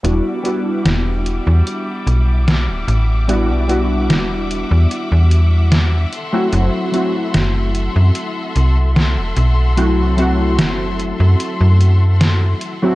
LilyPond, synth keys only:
\new Staff \with { instrumentName = "Synth keys" } { \time 4/4 \key e \minor \tempo 4 = 74 <g b d' e' fis'>8 <g b d' e' fis'>2.~ <g b d' e' fis'>8 | <g b d' e' fis'>8 <g b d' e' fis'>2. r16 <fis a c' e' fis'>16 | <fis a c' e' fis'>8 <fis a c' e' fis'>2.~ <fis a c' e' fis'>8 | <fis a c' e' fis'>8 <fis a c' e' fis'>2.~ <fis a c' e' fis'>16 <fis a c' e' fis'>16 | }